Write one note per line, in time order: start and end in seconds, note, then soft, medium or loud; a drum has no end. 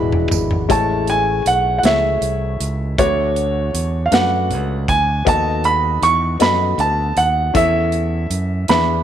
0.00 0.27 E1 medium
0.00 0.65 G#3 medium
0.00 0.67 G#3 medium
0.00 0.67 B3 medium
0.00 0.65 D4 soft
0.00 0.67 D4 medium
0.00 0.67 E4 medium
0.00 0.66 F#4 medium
0.00 0.73 B5 medium
0.12 floor tom medium
0.31 0.66 G#1 medium
0.31 floor tom medium
0.31 tambourine medium
0.51 floor tom medium
0.69 1.42 A1 medium
0.69 1.80 A2 medium
0.69 1.44 G#3 medium
0.69 1.44 A3 medium
0.69 1.44 E4 medium
0.69 1.44 C#5 medium
0.69 1.06 A5 medium
0.69 kick medium
0.69 closed hi-hat medium
1.07 1.44 G#5 medium
1.07 closed hi-hat soft
1.45 1.80 B1 medium
1.45 1.77 F#5 medium
1.45 closed hi-hat medium
1.78 1.85 F#5 medium
1.83 2.18 C#2 medium
1.83 2.58 A3 medium
1.83 2.58 E4 medium
1.83 2.59 G#4 medium
1.83 2.59 C#5 medium
1.83 2.95 E5 medium
1.83 snare loud
1.83 closed hi-hat medium
2.21 2.56 C2 medium
2.21 closed hi-hat medium
2.60 2.95 C#2 medium
2.60 closed hi-hat medium
2.98 3.70 D2 medium
2.98 4.08 D3 medium
2.98 3.73 A3 medium
2.98 3.73 D4 medium
2.98 3.73 F#4 medium
2.98 3.05 B4 medium
2.98 4.09 C#5 medium
2.98 kick medium
2.98 closed hi-hat medium
3.06 3.77 C#5 medium
3.36 closed hi-hat soft
3.74 4.09 E2 medium
3.74 closed hi-hat medium
4.06 4.12 F5 medium
4.11 4.52 F#2 medium
4.11 4.86 A3 medium
4.11 4.87 D4 medium
4.11 4.87 F#4 medium
4.11 4.87 B4 medium
4.11 4.85 F#5 medium
4.11 snare loud
4.11 closed hi-hat medium
4.50 4.85 C#2 medium
4.50 closed hi-hat soft
4.88 5.23 D2 medium
4.88 5.24 G#5 medium
4.88 kick medium
4.88 closed hi-hat medium
5.25 5.99 D#2 loud
5.25 6.37 D#3 medium
5.25 6.00 B3 medium
5.25 6.01 F#4 medium
5.25 6.01 A4 medium
5.25 6.01 D#5 medium
5.25 5.67 A5 medium
5.25 kick medium
5.25 closed hi-hat medium
5.64 6.04 B5 medium
5.64 closed hi-hat soft
6.02 6.37 E2 medium
6.02 6.38 C#6 medium
6.02 closed hi-hat medium
6.39 6.76 F#2 medium
6.39 7.15 B3 medium
6.39 7.15 F#4 medium
6.39 7.15 A4 medium
6.39 7.15 D#5 medium
6.39 6.80 B5 medium
6.39 snare loud
6.39 closed hi-hat medium
6.78 7.13 D2 medium
6.78 7.19 A5 medium
6.78 closed hi-hat soft
7.16 7.52 D#2 medium
7.16 7.53 F#5 medium
7.16 closed hi-hat medium
7.54 8.27 E2 medium
7.54 8.65 E3 medium
7.54 8.29 C#4 medium
7.54 8.29 E4 medium
7.54 8.29 A4 medium
7.54 8.30 E5 medium
7.54 8.73 E5 medium
7.54 kick medium
7.54 closed hi-hat medium
7.92 closed hi-hat soft
8.30 8.66 F#2 medium
8.30 closed hi-hat medium
8.68 9.03 E2 medium
8.68 9.03 E3 medium
8.68 9.03 D4 medium
8.68 9.03 G#4 soft
8.68 9.03 B4 medium
8.68 9.03 E5 medium
8.68 9.03 B5 medium
8.68 snare loud
8.68 closed hi-hat medium